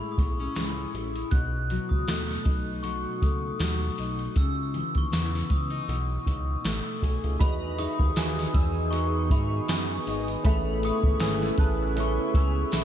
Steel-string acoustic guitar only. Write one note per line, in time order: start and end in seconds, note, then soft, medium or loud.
0.00 1.32 A2 medium
0.00 0.55 G#3 medium
0.00 0.18 C#4 medium
0.00 0.93 E4 medium
0.18 0.40 B3 medium
0.40 1.41 C#4 soft
0.57 1.41 G#3 medium
0.95 1.41 E4 medium
1.33 4.36 B2 medium
1.70 2.82 F#3 medium
2.08 3.21 A3 medium
2.46 3.98 D#4 soft
2.84 3.58 F#3 medium
3.22 4.44 A3 medium
3.59 4.44 F#3 medium
3.98 4.77 D#4 medium
4.37 5.88 C#3 medium
4.74 5.97 E3 medium
5.11 6.64 B3 medium
5.49 5.70 C#4 medium
5.70 5.96 D#4 soft
5.88 7.49 B2 medium
6.26 7.78 D#4 medium
6.64 7.49 A3 soft
7.02 8.15 G#4 medium
7.79 8.54 D#4 medium
8.16 10.83 G#4 medium
8.55 9.30 D#4 medium
8.93 9.68 B3 medium
9.31 10.06 D#4 medium
9.68 11.97 B3 medium
10.07 10.53 D#4 medium
10.44 12.84 A3 medium
10.83 11.59 G#4 medium
11.21 12.84 B4 medium
11.59 12.34 G#4 medium
11.97 12.71 C#4 medium
12.35 12.84 G#4 medium
12.73 12.84 C#4 medium